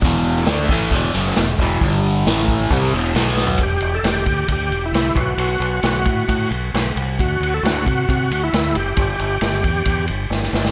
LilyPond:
<<
  \new Staff \with { instrumentName = "Tonewheel organ" } { \time 4/4 \key e \minor \tempo 4 = 134 r1 | r1 | g'8. a'16 g'4 g'8. e'8. fis'8~ | fis'2~ fis'8 r4. |
fis'8. a'16 fis'8 fis'8 fis'8. e'8. g'8~ | g'2~ g'8 r4. | }
  \new Staff \with { instrumentName = "Overdriven electric guitar" } { \clef bass \time 4/4 \key e \minor <e, b, e>4 <d a d'>8 <a, e a>8 <e, b, e>8 <fis, cis fis>8 <e, b,>8 <e, b, e>8 | <g, d g>4 <a, e a>4 <c g c'>8 <e, b, e>8 <b, fis b>4 | r1 | r1 |
r1 | r1 | }
  \new Staff \with { instrumentName = "Fingered electric bass" } { \clef bass \time 4/4 \key e \minor e,,4 d,8 a,,8 e,,8 fis,,8 e,,8 e,,8 | g,,4 a,,4 c,8 e,,8 b,,4 | e,,8 e,,8 e,,8 d,8 d,8 e,,8 c,8 b,,8 | b,,8 b,,8 b,,8 a,8 a,8 b,,8 b,,8 c,8 |
d,8 d,8 d,8 c8 c8 d,8 d,8 fis,,8 | g,,8 g,,8 g,,8 e,8 e,8 g,,8 g,,8 g,,8 | }
  \new DrumStaff \with { instrumentName = "Drums" } \drummode { \time 4/4 <hho bd>8 hho16 sn16 <hho sn>8 <hho bd>8 <hho bd>8 hho16 sn16 <hho sn>8 <hho bd>8 | <hho bd>8 hho8 <hho sn>8 <hho bd>8 <hho bd>8 hho8 <hho sn>8 sn16 tomfh16 | <bd cymr>8 cymr8 <cymr sn>8 <bd cymr>8 <bd cymr>8 cymr8 <cymr sn>8 <bd cymr>8 | cymr8 cymr8 <cymr sn>8 <bd cymr>8 <bd cymr>8 cymr8 <cymr sn>8 cymr8 |
<bd cymr>8 cymr8 <cymr sn>8 <bd cymr>8 <bd cymr>8 cymr8 <cymr sn>8 cymr8 | <bd cymr>8 cymr8 <cymr sn>8 <bd cymr>8 <bd cymr>8 cymr8 sn16 sn16 sn16 sn16 | }
>>